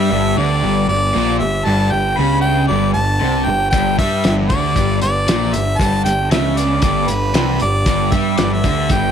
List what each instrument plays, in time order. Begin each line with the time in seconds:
Already playing: twelve-string acoustic guitar G3 B3 D4 G4, overdriven electric guitar G3, harmonica E5
0.11 picked electric bass G1, overdriven electric guitar G2, twelve-string acoustic guitar G2 D3 G3 B3 D4 G4
0.36 picked electric bass D2, overdriven electric guitar D3, twelve-string acoustic guitar G3 B3 D4 G4, harmonica D5
0.61 picked electric bass G1, overdriven electric guitar G2, twelve-string acoustic guitar G3 B3 D4 G4
0.88 picked electric bass G1, overdriven electric guitar G2, twelve-string acoustic guitar G3 B3 D4 G4, harmonica D5
1.15 picked electric bass A#1, twelve-string acoustic guitar G2 D3 G3 B3 D4 G4, overdriven electric guitar A#2
1.39 picked electric bass G1, overdriven electric guitar G2, twelve-string acoustic guitar G3 B3 D4 G4, harmonica E5
1.65 picked electric bass G1, overdriven electric guitar G2, twelve-string acoustic guitar G2 D3 G3 B3 D4 G4, harmonica A5
1.91 picked electric bass G1, overdriven electric guitar G2, twelve-string acoustic guitar G3 B3 D4 G4, harmonica G5
2.17 picked electric bass C#2, twelve-string acoustic guitar G2 D3 G3 B3 D4 G4, overdriven electric guitar C#3, harmonica B5
2.41 twelve-string acoustic guitar G3 B3 D4 G4, harmonica G5
2.68 picked electric bass G1, overdriven electric guitar G2, twelve-string acoustic guitar G3 B3 D4 G4, harmonica D5
2.93 picked electric bass G1, overdriven electric guitar G2, twelve-string acoustic guitar G3 B3 D4 G4, harmonica A5
3.20 picked electric bass C2, twelve-string acoustic guitar G2 D3 G3 B3 D4 G4, overdriven electric guitar C3
3.45 picked electric bass G1, overdriven electric guitar G2, twelve-string acoustic guitar G3 B3 D4 G4, harmonica G5
3.71 picked electric bass G1, twelve-string acoustic guitar G2 D3 G3 B3 D4 G4, overdriven electric guitar G2, harmonica G5, kick, closed hi-hat
3.98 picked electric bass G2, overdriven electric guitar G3, twelve-string acoustic guitar G3 B3 D4 G4, harmonica E5, kick, closed hi-hat
4.24 picked electric bass G1, twelve-string acoustic guitar G2 D3 G3 B3 D4 G4, overdriven electric guitar G2, snare, closed hi-hat
4.49 picked electric bass D2, overdriven electric guitar D3, twelve-string acoustic guitar G3 B3 D4 G4, harmonica D5, kick, closed hi-hat
4.76 picked electric bass G1, overdriven electric guitar G2, twelve-string acoustic guitar G3 B3 D4 G4, kick, closed hi-hat
5.01 picked electric bass G1, overdriven electric guitar G2, twelve-string acoustic guitar G3 B3 D4 G4, harmonica D5, closed hi-hat
5.27 picked electric bass A#1, twelve-string acoustic guitar G2 D3 G3 B3 D4 G4, overdriven electric guitar A#2, snare, closed hi-hat
5.53 picked electric bass G1, overdriven electric guitar G2, twelve-string acoustic guitar G3 B3 D4 G4, harmonica E5, closed hi-hat
5.78 picked electric bass G1, twelve-string acoustic guitar G2 D3 G3 B3 D4 G4, overdriven electric guitar G2, harmonica A5, kick, closed hi-hat
6.04 picked electric bass G1, overdriven electric guitar G2, twelve-string acoustic guitar G3 B3 D4 G4, harmonica G5, closed hi-hat
6.31 picked electric bass C#2, twelve-string acoustic guitar G2 D3 G3 B3 D4 G4, overdriven electric guitar C#3, harmonica E5, snare, closed hi-hat
6.55 twelve-string acoustic guitar G3 B3 D4 G4, harmonica D5, closed hi-hat
6.82 picked electric bass G1, overdriven electric guitar G2, twelve-string acoustic guitar G3 B3 D4 G4, harmonica D5, kick, closed hi-hat
7.08 picked electric bass G1, overdriven electric guitar G2, twelve-string acoustic guitar G3 B3 D4 G4, harmonica B4, closed hi-hat
7.34 picked electric bass C2, twelve-string acoustic guitar G2 D3 G3 B3 D4 G4, overdriven electric guitar C3, snare, closed hi-hat
7.60 picked electric bass G1, overdriven electric guitar G2, twelve-string acoustic guitar G3 B3 D4 G4, harmonica D5, closed hi-hat
7.86 picked electric bass G1, twelve-string acoustic guitar G2 D3 G3 B3 D4 G4, overdriven electric guitar G2, kick, closed hi-hat
8.12 picked electric bass G2, overdriven electric guitar G3, twelve-string acoustic guitar G3 B3 D4 G4, harmonica E5, kick, closed hi-hat
8.37 picked electric bass G1, overdriven electric guitar G2, twelve-string acoustic guitar G2 D3 G3 B3 D4 G4, harmonica D5, snare, closed hi-hat
8.53 harmonica E5
8.64 picked electric bass D2, overdriven electric guitar D3, twelve-string acoustic guitar G3 B3 D4 G4, kick, closed hi-hat
8.89 picked electric bass G1, overdriven electric guitar G2, twelve-string acoustic guitar G3 B3 D4 G4, harmonica G5, kick, closed hi-hat